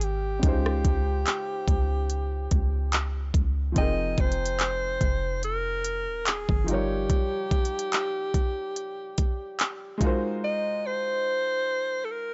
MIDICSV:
0, 0, Header, 1, 5, 480
1, 0, Start_track
1, 0, Key_signature, -4, "minor"
1, 0, Tempo, 833333
1, 248, Time_signature, 4, 2, 24, 8
1, 7107, End_track
2, 0, Start_track
2, 0, Title_t, "Alto saxophone"
2, 0, Program_c, 0, 65
2, 20, Note_on_c, 0, 67, 92
2, 1934, Note_off_c, 0, 67, 0
2, 2177, Note_on_c, 0, 75, 117
2, 2421, Note_on_c, 0, 72, 106
2, 2429, Note_off_c, 0, 75, 0
2, 3132, Note_off_c, 0, 72, 0
2, 3136, Note_on_c, 0, 70, 103
2, 3613, Note_on_c, 0, 68, 91
2, 3622, Note_off_c, 0, 70, 0
2, 3855, Note_on_c, 0, 67, 97
2, 3863, Note_off_c, 0, 68, 0
2, 5771, Note_off_c, 0, 67, 0
2, 6016, Note_on_c, 0, 75, 116
2, 6258, Note_on_c, 0, 72, 118
2, 6267, Note_off_c, 0, 75, 0
2, 6939, Note_on_c, 0, 69, 73
2, 6948, Note_off_c, 0, 72, 0
2, 6975, Note_on_c, 0, 70, 96
2, 6983, Note_off_c, 0, 69, 0
2, 7107, Note_off_c, 0, 70, 0
2, 7107, End_track
3, 0, Start_track
3, 0, Title_t, "Grand piano"
3, 0, Program_c, 1, 0
3, 0, Control_c, 1, 64, 127
3, 226, Note_on_c, 1, 49, 66
3, 238, Note_on_c, 1, 56, 62
3, 251, Note_on_c, 1, 63, 61
3, 256, Control_c, 1, 64, 0
3, 264, Note_on_c, 1, 65, 64
3, 276, Note_on_c, 1, 72, 72
3, 365, Control_c, 1, 64, 127
3, 2134, Note_off_c, 1, 49, 0
3, 2140, Note_off_c, 1, 56, 0
3, 2144, Note_on_c, 1, 53, 66
3, 2147, Note_off_c, 1, 63, 0
3, 2153, Note_off_c, 1, 65, 0
3, 2155, Note_on_c, 1, 60, 61
3, 2159, Note_off_c, 1, 72, 0
3, 2165, Note_on_c, 1, 63, 57
3, 2175, Note_on_c, 1, 79, 59
3, 2176, Control_c, 1, 64, 0
3, 2185, Note_on_c, 1, 68, 59
3, 2195, Note_on_c, 1, 70, 74
3, 2278, Control_c, 1, 64, 127
3, 3813, Note_off_c, 1, 53, 0
3, 3818, Note_off_c, 1, 60, 0
3, 3823, Note_off_c, 1, 63, 0
3, 3825, Note_on_c, 1, 53, 53
3, 3828, Note_off_c, 1, 79, 0
3, 3833, Note_off_c, 1, 68, 0
3, 3838, Note_off_c, 1, 70, 0
3, 3838, Note_on_c, 1, 63, 65
3, 3851, Note_on_c, 1, 65, 61
3, 3856, Control_c, 1, 64, 0
3, 3863, Note_on_c, 1, 55, 69
3, 3864, Note_on_c, 1, 70, 62
3, 3877, Note_off_c, 1, 53, 0
3, 3877, Note_on_c, 1, 73, 78
3, 3938, Control_c, 1, 64, 127
3, 5740, Note_off_c, 1, 63, 0
3, 5746, Note_off_c, 1, 65, 0
3, 5746, Note_on_c, 1, 56, 83
3, 5752, Note_off_c, 1, 55, 0
3, 5753, Note_off_c, 1, 70, 0
3, 5758, Note_on_c, 1, 63, 73
3, 5759, Note_off_c, 1, 73, 0
3, 5766, Note_on_c, 1, 65, 75
3, 5776, Control_c, 1, 64, 0
3, 5778, Note_on_c, 1, 66, 77
3, 5787, Note_on_c, 1, 70, 75
3, 5798, Note_on_c, 1, 72, 89
3, 5890, Control_c, 1, 64, 127
3, 7107, Note_off_c, 1, 56, 0
3, 7107, Note_off_c, 1, 63, 0
3, 7107, Note_off_c, 1, 65, 0
3, 7107, Note_off_c, 1, 66, 0
3, 7107, Note_off_c, 1, 70, 0
3, 7107, Note_off_c, 1, 72, 0
3, 7107, End_track
4, 0, Start_track
4, 0, Title_t, "808-style bass"
4, 0, Program_c, 2, 38
4, 0, Note_on_c, 2, 32, 108
4, 234, Note_off_c, 2, 32, 0
4, 250, Note_on_c, 2, 37, 113
4, 479, Note_off_c, 2, 37, 0
4, 490, Note_on_c, 2, 37, 107
4, 719, Note_off_c, 2, 37, 0
4, 967, Note_on_c, 2, 37, 108
4, 1428, Note_off_c, 2, 37, 0
4, 1450, Note_on_c, 2, 37, 107
4, 1910, Note_off_c, 2, 37, 0
4, 1926, Note_on_c, 2, 37, 96
4, 2157, Note_off_c, 2, 37, 0
4, 2168, Note_on_c, 2, 29, 111
4, 2398, Note_off_c, 2, 29, 0
4, 2408, Note_on_c, 2, 29, 105
4, 2868, Note_off_c, 2, 29, 0
4, 2887, Note_on_c, 2, 29, 116
4, 3501, Note_on_c, 2, 27, 94
4, 3509, Note_off_c, 2, 29, 0
4, 3727, Note_off_c, 2, 27, 0
4, 3738, Note_on_c, 2, 31, 109
4, 4074, Note_off_c, 2, 31, 0
4, 7107, End_track
5, 0, Start_track
5, 0, Title_t, "Drums"
5, 8, Note_on_c, 9, 42, 69
5, 65, Note_off_c, 9, 42, 0
5, 247, Note_on_c, 9, 42, 72
5, 248, Note_on_c, 9, 36, 119
5, 305, Note_off_c, 9, 36, 0
5, 305, Note_off_c, 9, 42, 0
5, 380, Note_on_c, 9, 37, 108
5, 438, Note_off_c, 9, 37, 0
5, 487, Note_on_c, 9, 36, 104
5, 488, Note_on_c, 9, 42, 77
5, 545, Note_off_c, 9, 36, 0
5, 546, Note_off_c, 9, 42, 0
5, 728, Note_on_c, 9, 42, 68
5, 730, Note_on_c, 9, 39, 103
5, 786, Note_off_c, 9, 42, 0
5, 788, Note_off_c, 9, 39, 0
5, 965, Note_on_c, 9, 36, 97
5, 968, Note_on_c, 9, 42, 61
5, 1023, Note_off_c, 9, 36, 0
5, 1026, Note_off_c, 9, 42, 0
5, 1208, Note_on_c, 9, 42, 63
5, 1265, Note_off_c, 9, 42, 0
5, 1447, Note_on_c, 9, 42, 74
5, 1449, Note_on_c, 9, 36, 95
5, 1504, Note_off_c, 9, 42, 0
5, 1506, Note_off_c, 9, 36, 0
5, 1687, Note_on_c, 9, 42, 75
5, 1689, Note_on_c, 9, 39, 112
5, 1744, Note_off_c, 9, 42, 0
5, 1746, Note_off_c, 9, 39, 0
5, 1924, Note_on_c, 9, 36, 95
5, 1926, Note_on_c, 9, 42, 69
5, 1982, Note_off_c, 9, 36, 0
5, 1984, Note_off_c, 9, 42, 0
5, 2166, Note_on_c, 9, 42, 72
5, 2167, Note_on_c, 9, 36, 125
5, 2223, Note_off_c, 9, 42, 0
5, 2224, Note_off_c, 9, 36, 0
5, 2406, Note_on_c, 9, 36, 100
5, 2406, Note_on_c, 9, 42, 45
5, 2464, Note_off_c, 9, 36, 0
5, 2464, Note_off_c, 9, 42, 0
5, 2487, Note_on_c, 9, 42, 62
5, 2544, Note_off_c, 9, 42, 0
5, 2566, Note_on_c, 9, 42, 80
5, 2624, Note_off_c, 9, 42, 0
5, 2647, Note_on_c, 9, 42, 67
5, 2648, Note_on_c, 9, 39, 104
5, 2704, Note_off_c, 9, 42, 0
5, 2706, Note_off_c, 9, 39, 0
5, 2885, Note_on_c, 9, 36, 93
5, 2887, Note_on_c, 9, 42, 63
5, 2943, Note_off_c, 9, 36, 0
5, 2945, Note_off_c, 9, 42, 0
5, 3127, Note_on_c, 9, 42, 64
5, 3185, Note_off_c, 9, 42, 0
5, 3367, Note_on_c, 9, 42, 74
5, 3424, Note_off_c, 9, 42, 0
5, 3607, Note_on_c, 9, 42, 72
5, 3609, Note_on_c, 9, 39, 109
5, 3665, Note_off_c, 9, 42, 0
5, 3667, Note_off_c, 9, 39, 0
5, 3737, Note_on_c, 9, 36, 94
5, 3795, Note_off_c, 9, 36, 0
5, 3848, Note_on_c, 9, 42, 71
5, 3906, Note_off_c, 9, 42, 0
5, 4088, Note_on_c, 9, 36, 124
5, 4088, Note_on_c, 9, 42, 66
5, 4145, Note_off_c, 9, 36, 0
5, 4146, Note_off_c, 9, 42, 0
5, 4327, Note_on_c, 9, 36, 107
5, 4328, Note_on_c, 9, 42, 49
5, 4385, Note_off_c, 9, 36, 0
5, 4385, Note_off_c, 9, 42, 0
5, 4407, Note_on_c, 9, 42, 63
5, 4465, Note_off_c, 9, 42, 0
5, 4486, Note_on_c, 9, 42, 81
5, 4544, Note_off_c, 9, 42, 0
5, 4567, Note_on_c, 9, 42, 67
5, 4569, Note_on_c, 9, 39, 101
5, 4625, Note_off_c, 9, 42, 0
5, 4626, Note_off_c, 9, 39, 0
5, 4805, Note_on_c, 9, 36, 97
5, 4807, Note_on_c, 9, 42, 64
5, 4863, Note_off_c, 9, 36, 0
5, 4864, Note_off_c, 9, 42, 0
5, 5047, Note_on_c, 9, 42, 64
5, 5105, Note_off_c, 9, 42, 0
5, 5286, Note_on_c, 9, 42, 74
5, 5288, Note_on_c, 9, 36, 98
5, 5344, Note_off_c, 9, 42, 0
5, 5346, Note_off_c, 9, 36, 0
5, 5527, Note_on_c, 9, 42, 70
5, 5529, Note_on_c, 9, 39, 115
5, 5584, Note_off_c, 9, 42, 0
5, 5586, Note_off_c, 9, 39, 0
5, 5764, Note_on_c, 9, 36, 95
5, 5767, Note_on_c, 9, 42, 68
5, 5822, Note_off_c, 9, 36, 0
5, 5824, Note_off_c, 9, 42, 0
5, 7107, End_track
0, 0, End_of_file